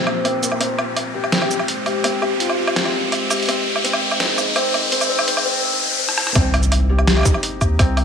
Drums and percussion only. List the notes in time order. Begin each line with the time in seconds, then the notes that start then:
0.07 low woodblock
0.25 closed hi-hat, low woodblock
0.43 closed hi-hat, shaker
0.52 low woodblock
0.61 closed hi-hat, low woodblock
0.79 low woodblock
0.97 closed hi-hat, low woodblock
1.24 low woodblock
1.32 snare, closed hi-hat
1.42 low woodblock
1.51 shaker
1.59 low woodblock
1.68 closed hi-hat
1.86 closed hi-hat, low woodblock
2.04 closed hi-hat, low woodblock
2.22 low woodblock
2.40 closed hi-hat
2.50 low woodblock
2.67 low woodblock
2.76 snare, closed hi-hat
2.85 low woodblock
3.12 closed hi-hat, low woodblock
3.31 closed hi-hat, low woodblock, shaker
3.34 closed hi-hat
3.36 closed hi-hat
3.40 closed hi-hat
3.43 closed hi-hat
3.46 closed hi-hat
3.49 closed hi-hat, low woodblock
3.76 low woodblock
3.85 closed hi-hat
3.93 low woodblock
4.11 low woodblock
4.20 snare, closed hi-hat
4.38 low woodblock, shaker
4.56 closed hi-hat, low woodblock
4.74 closed hi-hat, low woodblock
4.92 closed hi-hat
5.01 low woodblock, shaker
5.19 low woodblock
5.28 closed hi-hat
5.37 low woodblock
6.09 cross-stick
6.18 cross-stick
6.27 cross-stick
6.35 kick, closed hi-hat, low woodblock
6.54 closed hi-hat, low woodblock
6.63 shaker
6.72 closed hi-hat, low woodblock
6.99 low woodblock
7.07 snare, closed hi-hat
7.16 low woodblock
7.19 low woodblock
7.21 low woodblock
7.23 kick, low woodblock, shaker
7.34 low woodblock
7.43 closed hi-hat
7.61 kick, low woodblock, shaker
7.79 kick, closed hi-hat, low woodblock
7.97 closed hi-hat, low woodblock